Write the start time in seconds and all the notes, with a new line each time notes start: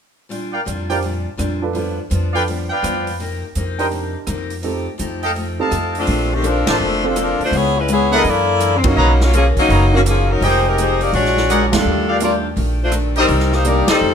0.29 A#2 G3 D4 F4, open hi-hat
0.52 A#4 D5 F5 G5
0.65 F2 A#2 G3 D4 F4, closed hi-hat
0.88 D4 F4 G4 A#4 C5 D5 F5 G5, open hi-hat
1.02 A#2 G3 D4 F4, open hi-hat
1.37 F2 A#2 G3 D4 F4, cross-stick, closed hi-hat
1.62 D4 F4 A4 B4
1.73 G2 F3 B3 D4 F4 A4 B4, open hi-hat
2.10 F2 G2 F3 B3 D4, closed hi-hat
2.33 D4 F4 A4 B4 D5 F5 G5, open hi-hat
2.48 G2 F3 B3 D4, open hi-hat
2.70 B4 D5 F5 G5
2.82 F2 G2 F3 B3 D4, cross-stick, closed hi-hat
3.07 open hi-hat
3.20 C3 A#3 D#4 G4, open hi-hat
3.55 F2 C3 A#3 D#4 G4, closed hi-hat
3.78 D4 D#4 G4 A#4 C5 D#5 G5, open hi-hat
3.91 C3 A#3 D#4 G4, open hi-hat
4.27 F2 C3 A#3 D#4 G4, cross-stick, closed hi-hat
4.50 open hi-hat
4.62 F3 A3 C4 D#4 G4 A4, open hi-hat
4.98 F2 F3 A3 D#4 G4, closed hi-hat
5.23 A4 D#5 F5 G5, open hi-hat
5.34 F3 A3 D#4 G4, open hi-hat
5.59 C4 D#4 G4 A4 D#5 F5 A5
5.70 F2 F3 A3 D#4 G4, cross-stick, closed hi-hat
5.95 A3 C4 D4 F4, open hi-hat
6.06 A#1 A#3 D4 A4 C5, open hi-hat
6.32 D#3 A3 C4 G4
6.42 F3 A#3 C4 D4 A4 A#4 C5, closed hi-hat
6.67 A1 A3 C4 D4 F4 A#4 C5 D5 A5, snare, ride
6.80 F1 A#3 D4 A4 C5
7.04 F3 C4 D4 F4 A4
7.16 A#3 C4 D4 A4 A#4 C5, cross-stick, closed hi-hat
7.20 F3
7.39 A3 D4 F4 C5, muted upright bass stroke, open hi-hat
7.51 C#2 C#3 G#3 B3 E4, open hi-hat
7.56 B3 E4 G#4 C#5
7.77 G#3 C#4 E4 B4
7.88 C#3 G#3 B3 E4 G#4 C#5, closed hi-hat
8.11 A#3 B3 D4 E4 G#4 A4 A#4 D5 D#5 E5 F#5, open hi-hat
8.24 F#2 E3 A#3 D4 E4 A4 D5, open hi-hat
8.60 F#2 E3 A#3 D4, cross-stick, closed hi-hat
8.76 C4
8.84 F#3 A#3 C#4 D#4 F#4, kick, ride
8.96 B1 B2 D#3 A#3 C#4 B4 C#5 D#5 A#5
9.21 F#3 A#3 C#4 F4, snare
9.32 B2 D#3 F3 A#3 C#4 G#4, closed hi-hat
9.57 F#3 A#3 C#4 D#4, muted upright bass stroke, kick, open hi-hat
9.69 F#1 B2 D#3 A#3 C#4 B4 C#5 D#5 A#5, open hi-hat
9.92 D#3 A#3 C#4 D#4 F#4
10.04 B2 D#3 F3 A#3 C#4 G#4, cross-stick, closed hi-hat
10.30 F#3 C#4 D#4 A#4
10.41 F1 F3 G#3 A#3 D#4 G4 G#4 A#4 C5 D#5 G5, open hi-hat
10.66 G#3 D#4 G4 A#4
10.77 F3 G#3 A#3 D#4 G4 G#4 C5, closed hi-hat
11.00 A#3 D#4 G4 D5, open hi-hat
11.13 A#1 A#2 F#3 G#3 D4 F#4 C#5, open hi-hat
11.26 snare
11.37 snare
11.49 A#2 F#3 G#3 D4 G#4 A#4 D5 F#5, cross-stick, closed hi-hat
11.72 E2 G3 A3 D4 F4 A4, snare, ride
11.85 D#2 D#3 A3 D4 G4
12.08 G3 D4 F4 G4 A4 A#4 D5 F5
12.20 D#3 G3 A3 A#3 D4 F4 G4 D5, closed hi-hat
12.56 A#1 D#3 A3 D4 G4, open hi-hat
12.82 A3 D4 F4 C5
12.91 D#3 A3 D4 G4, cross-stick, closed hi-hat
13.16 G3 C4 D#4 G4 A#4 C5 D#5, open hi-hat
13.28 C2 C3 G3 A#3 D#4, open hi-hat
13.40 snare
13.52 A#3 D#4 G4 C5, snare
13.64 C3 G3 A#3 D4 D#4 G4 D5, closed hi-hat
13.88 G3 C4 D#4 G4 A4 D5 D#5, muted upright bass stroke, snare, ride
14.01 F2 D#3 A3 D4